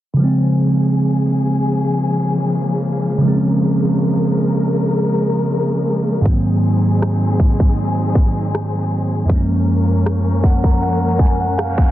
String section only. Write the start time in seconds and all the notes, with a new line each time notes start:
0.18 C#3 F3 G#3 A#3 G#4
3.21 A#4
6.26 F#3 C4 D#4 G#4
9.29 F3 A#3 C#4 A#4